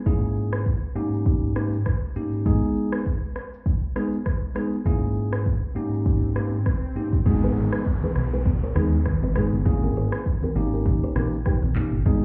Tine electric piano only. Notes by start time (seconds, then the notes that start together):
0.06 G#2 A#3 C#4 E4 G#4
0.95 G#2 A#3 C#4 D#4 G4
1.56 G#2 A#3 C#4 D#4 G4
2.16 G#2 A#3 C#4 D#4 G4
2.46 G#3 B3 D#4 G#4
3.96 G#3 B3 D#4 G#4
4.55 G#3 B3 D#4 G#4
4.86 G#2 A#3 C#4 E4 G#4
5.75 G#2 A#3 C#4 D#4 G4
6.36 G#2 A#3 C#4 D#4 G4
6.96 G#2 A#3 C#4 D#4 G4
7.26 G#3 B3 D#4 G#4
8.76 G#3 B3 D#4 G#4
9.35 G#3 B3 D#4 G#4
9.65 A#3 C#4 E4 G#4
10.55 A#3 C#4 D#4 G4
11.15 A#3 C#4 D#4 G4
11.76 A#3 C#4 D#4 G4
12.06 G#3 B3 D#4 G#4